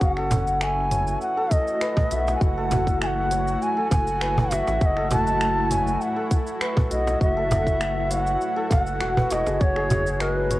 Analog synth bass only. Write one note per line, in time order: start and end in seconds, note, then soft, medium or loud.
0.01 1.16 F#1 loud
2.12 2.35 B1 medium
2.41 3.56 F#1 loud
3.92 4.62 F#1 medium
4.68 4.78 A1 medium
4.81 5.96 F#1 loud
6.92 7.15 B1 medium
7.21 8.36 F#1 loud
8.71 9.01 F#1 medium
9.01 9.25 E1 medium
9.31 9.44 E1 loud
9.47 9.58 F#1 medium
9.61 10.60 F#1 loud